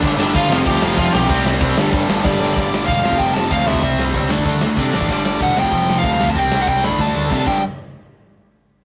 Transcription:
0.02 G1 G2 D3 G3 D4, kick, ride
0.18 G1 G2 D3 G3 D4, snare
0.34 G1 G2 D3 G3 F4, kick, ride
0.49 F1 F2 C3 F3 F4, snare
0.65 D2 F2 C3 F3 G4, kick, ride
0.82 F1 F2 C3 F3 F4, snare
0.97 F1 F2 C3 F3 F4, kick, ride
1.13 B1 F2 C3 F3 G4, snare
1.29 C2 C3 G3 C4, kick, ride
1.44 C2 C3 G3 C4, snare
1.61 C2 C3 G3 C4, kick, ride
1.76 G1 G2 D3 G3, snare
1.92 G1 G2 D3 G3, kick, ride
2.08 G1 G2 D3 G3, snare
2.24 G1 G2 D3 G3 D5, kick, ride
2.40 G1 G2 D3 G3, snare
2.54 G1 G2 D3 G3 D5, kick, open hi-hat
2.74 snare
2.86 E1 G2 D3 G3 F5, kick, open hi-hat
3.04 F1 F2 C3 F3, snare
3.12 kick
3.18 F1 F2 C3 F3 G5, kick, open hi-hat
3.34 A5, snare
3.51 D2 F2 C3 F3 F5, kick, open hi-hat
3.66 D2 F2 C3 F3 E5, snare
3.75 kick
3.82 C2 C3 G3 C4, kick, open hi-hat
3.98 C2, snare
4.14 C#2 C3 G3 C4, kick, open hi-hat
4.30 D2 D3 A3 D4, snare
4.38 kick
4.45 D2 D3 A3 D4, kick, open hi-hat
4.61 D2, snare
4.76 C3 D3 A3 D4 D5, kick, open hi-hat
4.93 A1 D3 A3 D4, snare
5.01 kick
5.08 G1 G2 D3 G3, kick, open hi-hat
5.13 D5
5.25 snare
5.40 E1 G2 D3 G3 F#5, kick, open hi-hat
5.55 F1 F2 C3 F3, snare
5.59 G5
5.64 kick
5.71 F1 F2 C3 F3, kick, open hi-hat
5.90 snare
5.98 F5
6.03 D2 F2 C3 F3, kick, open hi-hat
6.18 D2 F2 C3 F3, snare
6.28 A5, kick
6.35 C2 C3 G3 C4, kick, open hi-hat
6.39 G5
6.52 C2, snare
6.62 F#5
6.67 C2 C3 G3 C4 G5, kick, open hi-hat
6.83 D2 D3 A3 D4 B5, snare
6.91 kick
6.98 D2 D3 A3 D4 A5, kick, snare
7.16 D2, snare
7.30 C3 D3 A3 D4, kick, snare
7.46 G1 G2 D3 G3 G5, kick, crash

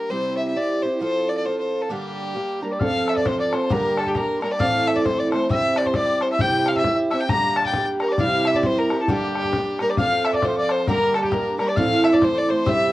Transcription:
Already playing: A#3 D4 G4 A#4
0.10 C3 G3 C4 E4 G4 C5
0.37 E5
0.47 E5
0.55 G3 C4 E4 G4 D5
0.82 C4 E4 G4 C5
1.01 F3 C4 F4 A4 C5
1.28 D5
1.37 D5
1.45 F3 C4 F4 A4 C5
1.59 C5
1.82 A4
1.90 G2 D3 G3 A#3 D4 G4
2.35 G3 A#3 D4 G4
2.61 G3 A#3 D4 G4 A#4 A#5
2.71 D5 D6
2.80 F3 C4 F4 A4 F5 F6, bodhran
3.06 E5 E6, bodhran
3.16 D5 D6, bodhran
3.25 F3 C4 F4 A4 C5 C6, bodhran
3.40 D5 D6
3.51 C4 F4 A4 C5 C6, bodhran
3.70 G2 D3 G3 A#3 D4 G4 A#4 A#5, bodhran
3.98 A4 A5, bodhran
4.06 G4 G5, bodhran
4.14 G3 A#3 D4 G4 A#4 A#5, bodhran
4.39 D4 G4 A#4 A#5 C6, bodhran
4.43 G3 A#3
4.51 D5 D6
4.59 A2 E3 A3 C4 E4 A4 F5 F6, bodhran
4.87 E5 E6, bodhran
4.96 D5 D6, bodhran
5.04 A3 C4 E4 A4 C5 C6, bodhran
5.18 D5 D6
5.32 A3 C4 E4 A4 C5 C6, bodhran
5.49 C3 G3 C4 E4 G4 E5 E6, bodhran
5.76 D5 D6, bodhran
5.86 C5 C6, bodhran
5.94 G3 C4 E4 G4 D5 D6, bodhran
6.21 C5 C6, bodhran
6.32 E5 E6
6.39 C3 G3 C4 E4 G4 G5 G6, bodhran
6.66 F5 F6, bodhran
6.76 E5 E6, bodhran
6.83 G3 C4 E4 G4, bodhran
7.11 C4 E4 G4 E5 E6, bodhran
7.20 G5 G6
7.29 A#2 D3 G3 A#3 D4 G4 A#5 A#6, bodhran
7.56 A5 A6, bodhran
7.65 G5, bodhran
7.74 G3 A#3 D4 G4, bodhran
8.00 A#4 A#5, bodhran
8.09 D5 D6
8.18 C3 G3 C4 E4 G4 F5 F6, bodhran
8.45 E5 E6, bodhran
8.53 D5 D6, bodhran
8.63 G3 C4 E4 G4 C5 C6, bodhran
8.78 A#4 A#5
8.90 C4 E4 G4, bodhran
9.00 A4 A5
9.08 G2 D3 G3 A#3 D4 G4 G5, bodhran
9.35 bodhran
9.44 bodhran
9.53 G3 A#3 D4 G4, bodhran
9.79 G3 A#3 D4 G4 A#4 A#5, bodhran
9.88 D5 D6
9.97 F3 C4 F4 A4 F5 F6, bodhran
10.22 E5 E6 F6, bodhran
10.33 D5 D6, bodhran
10.42 F3 C4 F4 A4 C5 C6, bodhran
10.55 D5 D6
10.69 C5 C6, bodhran
10.86 G2 D3 G3 A#3 D4 G4 A#4 A#5, bodhran
11.14 A4 A5, bodhran
11.23 G4 G5, bodhran
11.31 G3 A#3 D4 G4 A#4 A#5, bodhran
11.58 G3 A#3 D4 G4 A#4 A#5, bodhran
11.67 D5 D6
11.76 A2 E3 A3 C4 E4 A4 F5 F6, bodhran
12.00 E5 F5 E6, bodhran
12.04 E5
12.12 D5 D6, bodhran
12.21 A3 C4 E4 A4 C5 C6, bodhran
12.35 D5 D6
12.49 A3 C4 E4 A4 C5 C6
12.65 C3 G3 C4 E4 G4 E5 E6, bodhran

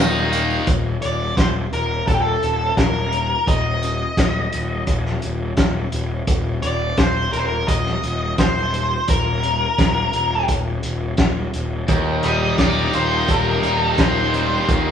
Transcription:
Already playing: D#1 D#3 G3 A#3 D#4 G4 A#4 G5
0.15 tambourine
0.32 A#3, closed hi-hat, tambourine
0.50 tambourine
0.67 D#1, kick, closed hi-hat
1.02 D#1 D5, closed hi-hat
1.37 D#1 C5, kick, snare, closed hi-hat
1.72 D#1 A#4, closed hi-hat
2.07 D#1 A4, kick, closed hi-hat
2.14 G4
2.21 A4
2.42 D#1, closed hi-hat
2.77 D#1 A#4, kick, snare, closed hi-hat
3.12 closed hi-hat
3.47 D#1 D#5, kick, closed hi-hat
3.83 closed hi-hat
4.17 D#1, kick, snare, closed hi-hat
4.52 D#1, closed hi-hat
4.87 D#1, kick, closed hi-hat
5.06 snare
5.22 D#1, closed hi-hat
5.57 D#1, kick, snare, closed hi-hat
5.92 D#1, closed hi-hat
6.27 D#1, kick, closed hi-hat
6.62 D#1 D5, closed hi-hat
6.97 D#1 C5, kick, snare, closed hi-hat
7.33 D#1 A#4, closed hi-hat
7.39 C5
7.47 A#4
7.67 D#1 D#5, kick, closed hi-hat
7.86 snare
8.03 D#1, closed hi-hat
8.38 D#1 C5, kick, snare, closed hi-hat
8.74 closed hi-hat
9.08 D#1 A#4, kick, closed hi-hat
9.43 closed hi-hat
9.78 D#1, kick, snare, closed hi-hat
10.13 D#1, closed hi-hat
10.48 D#1, kick, closed hi-hat
10.83 D#1, closed hi-hat
11.17 D#1, kick, snare, closed hi-hat
11.54 D#1, closed hi-hat
11.88 D#1 D#2 D#4 G4 A#4 G5, kick, closed hi-hat
12.23 D#1 G3 D#5, closed hi-hat
12.58 D#1 D#4 D5, kick, snare, closed hi-hat
12.93 D#1 A#3 C5, closed hi-hat
13.28 D#1 G3 A#4, kick, closed hi-hat
13.63 D#1 D#4, closed hi-hat
13.80 A4
13.98 D#1 A#3 C5, kick, snare, closed hi-hat
14.34 G3, closed hi-hat
14.68 D#1 D#2, kick, closed hi-hat

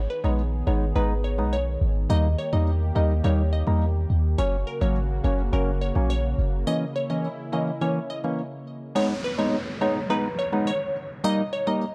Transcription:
Already playing: D#3 B3 G#4
0.10 B4
0.24 A#1 G#3 B3 D#4 C#5
0.67 G#1 G#3 B3 D#4 C#5
0.95 G#1 G#3 B3 D#4 B4
1.24 C#5
1.38 B1 G#3 B3 D#4
1.53 C#5
1.81 G#1
2.10 D#2 G3 A#3 D#4 G4 D#5
2.38 C#5
2.52 E2 G3 A#3 D#4 D#5
2.95 D#2 G3 A#3 D#4 D#5
3.24 D#2 G3 A#3 D#4 C#5
3.53 D#5
3.67 E2 G3 A#3 D#4
4.10 D#2
4.38 F#1 C#3 F#3 A#3 C#4 F#4 C#5
4.67 A#4
4.81 G#1 F#3 A#3 C#4 C#5
5.24 F#1 F#3 A#3 C#4 C#5
5.52 F#1 F#3 A#3 C#4 A#4
5.81 C#5
5.95 A#1 F#3 A#3 C#4
6.10 C#5
6.38 F#1
6.67 E3 A#3 C#4 E4 D#5
6.96 C#5
7.10 E3 A#3 C#4 D#5
7.53 E3 A#3 C#4 D#5
7.81 E3 A#3 C#4 C#5
8.10 D#5
8.24 E3 A#3 C#4
8.95 G#3 B3 D#4 C#5, downlifter
9.24 B4
9.38 G#3 B3 D#4 C#5
9.81 G#3 B3 D#4 C#5
10.10 G#3 B3 D#4 B4
10.39 C#5
10.52 G#3 B3 D#4
10.67 C#5
11.24 G3 A#3 D#4 D#5
11.53 C#5
11.67 G3 A#3 D#4 D#5

